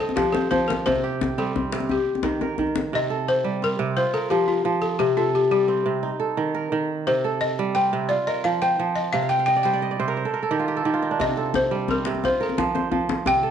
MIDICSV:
0, 0, Header, 1, 4, 480
1, 0, Start_track
1, 0, Tempo, 344630
1, 1196, Time_signature, 12, 3, 24, 8
1, 18813, End_track
2, 0, Start_track
2, 0, Title_t, "Balafon"
2, 0, Program_c, 0, 12
2, 4, Note_on_c, 0, 69, 77
2, 110, Note_off_c, 0, 69, 0
2, 222, Note_on_c, 0, 67, 73
2, 452, Note_on_c, 0, 69, 80
2, 475, Note_off_c, 0, 67, 0
2, 686, Note_off_c, 0, 69, 0
2, 707, Note_on_c, 0, 72, 90
2, 943, Note_on_c, 0, 70, 69
2, 959, Note_off_c, 0, 72, 0
2, 1196, Note_on_c, 0, 72, 100
2, 1198, Note_off_c, 0, 70, 0
2, 1929, Note_on_c, 0, 69, 72
2, 1943, Note_off_c, 0, 72, 0
2, 2665, Note_on_c, 0, 67, 59
2, 2671, Note_off_c, 0, 69, 0
2, 3563, Note_off_c, 0, 67, 0
2, 4112, Note_on_c, 0, 75, 104
2, 4575, Note_on_c, 0, 72, 92
2, 4597, Note_off_c, 0, 75, 0
2, 5068, Note_on_c, 0, 70, 89
2, 5069, Note_off_c, 0, 72, 0
2, 5508, Note_off_c, 0, 70, 0
2, 5524, Note_on_c, 0, 72, 87
2, 5762, Note_on_c, 0, 69, 84
2, 5776, Note_off_c, 0, 72, 0
2, 5992, Note_on_c, 0, 67, 84
2, 6015, Note_off_c, 0, 69, 0
2, 6237, Note_on_c, 0, 65, 77
2, 6250, Note_off_c, 0, 67, 0
2, 6692, Note_off_c, 0, 65, 0
2, 6708, Note_on_c, 0, 69, 82
2, 6822, Note_off_c, 0, 69, 0
2, 6950, Note_on_c, 0, 67, 95
2, 7064, Note_off_c, 0, 67, 0
2, 7200, Note_on_c, 0, 65, 74
2, 7430, Note_off_c, 0, 65, 0
2, 7452, Note_on_c, 0, 67, 75
2, 7664, Note_off_c, 0, 67, 0
2, 7681, Note_on_c, 0, 67, 78
2, 8591, Note_off_c, 0, 67, 0
2, 9847, Note_on_c, 0, 72, 98
2, 10318, Note_on_c, 0, 75, 98
2, 10343, Note_off_c, 0, 72, 0
2, 10770, Note_off_c, 0, 75, 0
2, 10792, Note_on_c, 0, 79, 91
2, 11265, Note_on_c, 0, 74, 96
2, 11295, Note_off_c, 0, 79, 0
2, 11499, Note_off_c, 0, 74, 0
2, 11522, Note_on_c, 0, 75, 91
2, 11757, Note_on_c, 0, 77, 84
2, 11773, Note_off_c, 0, 75, 0
2, 12003, Note_on_c, 0, 79, 97
2, 12010, Note_off_c, 0, 77, 0
2, 12473, Note_on_c, 0, 75, 84
2, 12499, Note_off_c, 0, 79, 0
2, 12711, Note_on_c, 0, 77, 98
2, 12727, Note_off_c, 0, 75, 0
2, 12941, Note_on_c, 0, 79, 90
2, 12966, Note_off_c, 0, 77, 0
2, 13160, Note_off_c, 0, 79, 0
2, 13177, Note_on_c, 0, 79, 96
2, 13398, Note_off_c, 0, 79, 0
2, 13414, Note_on_c, 0, 79, 80
2, 14331, Note_off_c, 0, 79, 0
2, 15616, Note_on_c, 0, 75, 113
2, 16052, Note_off_c, 0, 75, 0
2, 16093, Note_on_c, 0, 72, 89
2, 16577, Note_off_c, 0, 72, 0
2, 16583, Note_on_c, 0, 70, 76
2, 17014, Note_off_c, 0, 70, 0
2, 17061, Note_on_c, 0, 72, 95
2, 17292, Note_off_c, 0, 72, 0
2, 17312, Note_on_c, 0, 69, 66
2, 17515, Note_off_c, 0, 69, 0
2, 18488, Note_on_c, 0, 79, 118
2, 18813, Note_off_c, 0, 79, 0
2, 18813, End_track
3, 0, Start_track
3, 0, Title_t, "Kora"
3, 0, Program_c, 1, 46
3, 0, Note_on_c, 1, 60, 66
3, 0, Note_on_c, 1, 63, 62
3, 0, Note_on_c, 1, 67, 68
3, 0, Note_on_c, 1, 69, 62
3, 0, Note_on_c, 1, 75, 58
3, 228, Note_on_c, 1, 53, 75
3, 314, Note_off_c, 1, 63, 0
3, 471, Note_on_c, 1, 72, 67
3, 507, Note_off_c, 1, 67, 0
3, 695, Note_off_c, 1, 53, 0
3, 712, Note_on_c, 1, 53, 82
3, 1202, Note_on_c, 1, 48, 77
3, 1266, Note_off_c, 1, 53, 0
3, 1444, Note_on_c, 1, 67, 68
3, 1480, Note_off_c, 1, 75, 0
3, 1573, Note_off_c, 1, 69, 0
3, 1771, Note_off_c, 1, 60, 0
3, 1921, Note_on_c, 1, 60, 62
3, 1923, Note_on_c, 1, 55, 79
3, 2125, Note_off_c, 1, 72, 0
3, 2159, Note_off_c, 1, 60, 0
3, 2165, Note_on_c, 1, 60, 56
3, 2386, Note_off_c, 1, 48, 0
3, 2402, Note_on_c, 1, 48, 74
3, 2637, Note_off_c, 1, 67, 0
3, 2642, Note_on_c, 1, 67, 57
3, 2714, Note_off_c, 1, 55, 0
3, 2715, Note_off_c, 1, 48, 0
3, 3117, Note_on_c, 1, 51, 68
3, 3366, Note_on_c, 1, 70, 65
3, 3587, Note_off_c, 1, 51, 0
3, 3603, Note_on_c, 1, 51, 73
3, 4083, Note_on_c, 1, 48, 81
3, 4160, Note_off_c, 1, 51, 0
3, 4319, Note_on_c, 1, 69, 64
3, 4403, Note_off_c, 1, 70, 0
3, 4609, Note_off_c, 1, 67, 0
3, 4672, Note_off_c, 1, 60, 0
3, 4797, Note_on_c, 1, 55, 75
3, 5046, Note_on_c, 1, 60, 63
3, 5261, Note_off_c, 1, 48, 0
3, 5278, Note_on_c, 1, 48, 86
3, 5527, Note_on_c, 1, 65, 65
3, 5603, Note_off_c, 1, 48, 0
3, 5603, Note_off_c, 1, 55, 0
3, 5762, Note_on_c, 1, 70, 68
3, 5845, Note_off_c, 1, 69, 0
3, 6003, Note_on_c, 1, 53, 85
3, 6459, Note_off_c, 1, 53, 0
3, 6475, Note_on_c, 1, 53, 88
3, 6958, Note_on_c, 1, 48, 87
3, 7044, Note_off_c, 1, 53, 0
3, 7200, Note_on_c, 1, 69, 76
3, 7284, Note_off_c, 1, 70, 0
3, 7553, Note_off_c, 1, 60, 0
3, 7635, Note_off_c, 1, 65, 0
3, 7676, Note_on_c, 1, 55, 81
3, 7913, Note_on_c, 1, 60, 67
3, 8141, Note_off_c, 1, 48, 0
3, 8157, Note_on_c, 1, 48, 78
3, 8396, Note_on_c, 1, 63, 68
3, 8483, Note_off_c, 1, 55, 0
3, 8484, Note_off_c, 1, 48, 0
3, 8625, Note_off_c, 1, 69, 0
3, 8630, Note_on_c, 1, 69, 66
3, 8877, Note_on_c, 1, 51, 84
3, 9117, Note_on_c, 1, 70, 68
3, 9343, Note_off_c, 1, 51, 0
3, 9359, Note_on_c, 1, 51, 85
3, 9852, Note_on_c, 1, 48, 89
3, 9922, Note_off_c, 1, 51, 0
3, 10085, Note_off_c, 1, 69, 0
3, 10091, Note_on_c, 1, 69, 74
3, 10174, Note_off_c, 1, 70, 0
3, 10420, Note_off_c, 1, 60, 0
3, 10571, Note_on_c, 1, 55, 89
3, 10655, Note_off_c, 1, 63, 0
3, 10803, Note_on_c, 1, 60, 63
3, 11026, Note_off_c, 1, 48, 0
3, 11043, Note_on_c, 1, 48, 84
3, 11282, Note_on_c, 1, 65, 69
3, 11360, Note_off_c, 1, 48, 0
3, 11360, Note_off_c, 1, 55, 0
3, 11522, Note_on_c, 1, 70, 71
3, 11606, Note_off_c, 1, 69, 0
3, 11765, Note_on_c, 1, 53, 84
3, 12008, Note_on_c, 1, 72, 75
3, 12233, Note_off_c, 1, 53, 0
3, 12249, Note_on_c, 1, 53, 78
3, 12726, Note_on_c, 1, 48, 90
3, 12797, Note_off_c, 1, 53, 0
3, 12848, Note_on_c, 1, 77, 63
3, 12965, Note_on_c, 1, 79, 76
3, 13074, Note_off_c, 1, 77, 0
3, 13080, Note_on_c, 1, 77, 64
3, 13203, Note_on_c, 1, 75, 75
3, 13295, Note_off_c, 1, 70, 0
3, 13310, Note_off_c, 1, 60, 0
3, 13319, Note_on_c, 1, 74, 73
3, 13390, Note_off_c, 1, 65, 0
3, 13438, Note_off_c, 1, 72, 0
3, 13442, Note_on_c, 1, 55, 82
3, 13443, Note_on_c, 1, 72, 66
3, 13552, Note_off_c, 1, 74, 0
3, 13557, Note_on_c, 1, 74, 67
3, 13641, Note_off_c, 1, 75, 0
3, 13681, Note_on_c, 1, 75, 72
3, 13797, Note_off_c, 1, 74, 0
3, 13802, Note_on_c, 1, 74, 66
3, 13906, Note_off_c, 1, 48, 0
3, 13916, Note_off_c, 1, 72, 0
3, 13921, Note_on_c, 1, 48, 79
3, 13922, Note_on_c, 1, 72, 77
3, 14037, Note_on_c, 1, 70, 80
3, 14157, Note_off_c, 1, 72, 0
3, 14163, Note_on_c, 1, 72, 59
3, 14233, Note_off_c, 1, 48, 0
3, 14233, Note_off_c, 1, 55, 0
3, 14263, Note_off_c, 1, 79, 0
3, 14278, Note_on_c, 1, 69, 70
3, 14362, Note_off_c, 1, 70, 0
3, 14396, Note_on_c, 1, 70, 70
3, 14470, Note_off_c, 1, 77, 0
3, 14517, Note_off_c, 1, 69, 0
3, 14522, Note_on_c, 1, 69, 73
3, 14636, Note_on_c, 1, 51, 84
3, 14638, Note_on_c, 1, 67, 73
3, 14719, Note_off_c, 1, 74, 0
3, 14756, Note_on_c, 1, 65, 65
3, 14869, Note_off_c, 1, 67, 0
3, 14875, Note_on_c, 1, 67, 70
3, 14990, Note_off_c, 1, 69, 0
3, 14995, Note_on_c, 1, 69, 70
3, 15079, Note_off_c, 1, 70, 0
3, 15099, Note_off_c, 1, 51, 0
3, 15111, Note_off_c, 1, 67, 0
3, 15115, Note_on_c, 1, 51, 86
3, 15117, Note_on_c, 1, 67, 71
3, 15171, Note_off_c, 1, 75, 0
3, 15226, Note_off_c, 1, 65, 0
3, 15232, Note_on_c, 1, 65, 70
3, 15355, Note_on_c, 1, 63, 64
3, 15474, Note_on_c, 1, 62, 66
3, 15593, Note_on_c, 1, 48, 86
3, 15668, Note_off_c, 1, 51, 0
3, 15817, Note_off_c, 1, 72, 0
3, 15833, Note_off_c, 1, 69, 0
3, 15838, Note_on_c, 1, 69, 70
3, 16313, Note_on_c, 1, 55, 86
3, 16556, Note_on_c, 1, 60, 59
3, 16789, Note_off_c, 1, 48, 0
3, 16806, Note_on_c, 1, 48, 84
3, 17036, Note_off_c, 1, 65, 0
3, 17042, Note_on_c, 1, 65, 61
3, 17084, Note_off_c, 1, 67, 0
3, 17102, Note_off_c, 1, 48, 0
3, 17102, Note_off_c, 1, 55, 0
3, 17279, Note_on_c, 1, 70, 66
3, 17362, Note_off_c, 1, 69, 0
3, 17522, Note_on_c, 1, 53, 82
3, 17614, Note_off_c, 1, 63, 0
3, 17756, Note_on_c, 1, 72, 70
3, 17813, Note_off_c, 1, 62, 0
3, 17971, Note_off_c, 1, 53, 0
3, 17987, Note_on_c, 1, 53, 76
3, 18469, Note_on_c, 1, 48, 95
3, 18536, Note_off_c, 1, 53, 0
3, 18706, Note_on_c, 1, 69, 73
3, 18789, Note_off_c, 1, 70, 0
3, 18813, Note_off_c, 1, 48, 0
3, 18813, Note_off_c, 1, 60, 0
3, 18813, Note_off_c, 1, 65, 0
3, 18813, Note_off_c, 1, 69, 0
3, 18813, Note_off_c, 1, 72, 0
3, 18813, End_track
4, 0, Start_track
4, 0, Title_t, "Djembe"
4, 123, Note_on_c, 9, 63, 54
4, 234, Note_on_c, 9, 62, 76
4, 234, Note_on_c, 9, 64, 76
4, 263, Note_off_c, 9, 63, 0
4, 366, Note_off_c, 9, 62, 0
4, 366, Note_on_c, 9, 62, 21
4, 373, Note_off_c, 9, 64, 0
4, 482, Note_on_c, 9, 63, 81
4, 505, Note_off_c, 9, 62, 0
4, 621, Note_off_c, 9, 63, 0
4, 721, Note_on_c, 9, 64, 73
4, 853, Note_on_c, 9, 62, 24
4, 860, Note_off_c, 9, 64, 0
4, 979, Note_off_c, 9, 62, 0
4, 979, Note_on_c, 9, 62, 70
4, 979, Note_on_c, 9, 63, 67
4, 1099, Note_off_c, 9, 62, 0
4, 1099, Note_on_c, 9, 62, 23
4, 1118, Note_off_c, 9, 63, 0
4, 1217, Note_on_c, 9, 64, 74
4, 1238, Note_off_c, 9, 62, 0
4, 1331, Note_on_c, 9, 63, 55
4, 1356, Note_off_c, 9, 64, 0
4, 1470, Note_off_c, 9, 63, 0
4, 1566, Note_on_c, 9, 62, 21
4, 1691, Note_off_c, 9, 62, 0
4, 1691, Note_on_c, 9, 62, 67
4, 1691, Note_on_c, 9, 63, 67
4, 1691, Note_on_c, 9, 64, 73
4, 1830, Note_off_c, 9, 62, 0
4, 1830, Note_off_c, 9, 63, 0
4, 1830, Note_off_c, 9, 64, 0
4, 2049, Note_on_c, 9, 62, 22
4, 2171, Note_off_c, 9, 62, 0
4, 2171, Note_on_c, 9, 62, 22
4, 2171, Note_on_c, 9, 63, 71
4, 2171, Note_on_c, 9, 64, 65
4, 2310, Note_off_c, 9, 62, 0
4, 2310, Note_off_c, 9, 63, 0
4, 2310, Note_off_c, 9, 64, 0
4, 2402, Note_on_c, 9, 62, 74
4, 2511, Note_off_c, 9, 62, 0
4, 2511, Note_on_c, 9, 62, 22
4, 2511, Note_on_c, 9, 63, 54
4, 2639, Note_on_c, 9, 64, 60
4, 2650, Note_off_c, 9, 62, 0
4, 2650, Note_off_c, 9, 63, 0
4, 2756, Note_on_c, 9, 62, 22
4, 2778, Note_off_c, 9, 64, 0
4, 2895, Note_off_c, 9, 62, 0
4, 2998, Note_on_c, 9, 63, 52
4, 3105, Note_on_c, 9, 62, 75
4, 3105, Note_on_c, 9, 64, 72
4, 3137, Note_off_c, 9, 63, 0
4, 3245, Note_off_c, 9, 62, 0
4, 3245, Note_off_c, 9, 64, 0
4, 3357, Note_on_c, 9, 63, 74
4, 3497, Note_off_c, 9, 63, 0
4, 3594, Note_on_c, 9, 62, 22
4, 3594, Note_on_c, 9, 64, 72
4, 3716, Note_off_c, 9, 62, 0
4, 3716, Note_on_c, 9, 62, 24
4, 3733, Note_off_c, 9, 64, 0
4, 3838, Note_off_c, 9, 62, 0
4, 3838, Note_on_c, 9, 62, 64
4, 3838, Note_on_c, 9, 63, 68
4, 3977, Note_off_c, 9, 62, 0
4, 3977, Note_off_c, 9, 63, 0
4, 15598, Note_on_c, 9, 62, 19
4, 15598, Note_on_c, 9, 64, 60
4, 15719, Note_on_c, 9, 63, 44
4, 15737, Note_off_c, 9, 62, 0
4, 15737, Note_off_c, 9, 64, 0
4, 15858, Note_off_c, 9, 63, 0
4, 16075, Note_on_c, 9, 62, 57
4, 16075, Note_on_c, 9, 63, 60
4, 16075, Note_on_c, 9, 64, 57
4, 16196, Note_off_c, 9, 62, 0
4, 16196, Note_on_c, 9, 62, 16
4, 16214, Note_off_c, 9, 63, 0
4, 16214, Note_off_c, 9, 64, 0
4, 16335, Note_off_c, 9, 62, 0
4, 16551, Note_on_c, 9, 63, 53
4, 16551, Note_on_c, 9, 64, 57
4, 16691, Note_off_c, 9, 63, 0
4, 16691, Note_off_c, 9, 64, 0
4, 16784, Note_on_c, 9, 62, 68
4, 16918, Note_on_c, 9, 63, 50
4, 16924, Note_off_c, 9, 62, 0
4, 17046, Note_on_c, 9, 62, 18
4, 17046, Note_on_c, 9, 64, 63
4, 17057, Note_off_c, 9, 63, 0
4, 17185, Note_off_c, 9, 62, 0
4, 17185, Note_off_c, 9, 64, 0
4, 17403, Note_on_c, 9, 63, 50
4, 17525, Note_on_c, 9, 62, 72
4, 17525, Note_on_c, 9, 64, 65
4, 17543, Note_off_c, 9, 63, 0
4, 17646, Note_off_c, 9, 62, 0
4, 17646, Note_on_c, 9, 62, 20
4, 17664, Note_off_c, 9, 64, 0
4, 17764, Note_on_c, 9, 63, 69
4, 17785, Note_off_c, 9, 62, 0
4, 17903, Note_off_c, 9, 63, 0
4, 17991, Note_on_c, 9, 64, 68
4, 18123, Note_on_c, 9, 62, 22
4, 18131, Note_off_c, 9, 64, 0
4, 18236, Note_off_c, 9, 62, 0
4, 18236, Note_on_c, 9, 62, 66
4, 18236, Note_on_c, 9, 63, 74
4, 18356, Note_off_c, 9, 62, 0
4, 18356, Note_on_c, 9, 62, 23
4, 18375, Note_off_c, 9, 63, 0
4, 18465, Note_off_c, 9, 62, 0
4, 18465, Note_on_c, 9, 62, 23
4, 18465, Note_on_c, 9, 64, 71
4, 18597, Note_on_c, 9, 63, 53
4, 18605, Note_off_c, 9, 62, 0
4, 18605, Note_off_c, 9, 64, 0
4, 18737, Note_off_c, 9, 63, 0
4, 18813, End_track
0, 0, End_of_file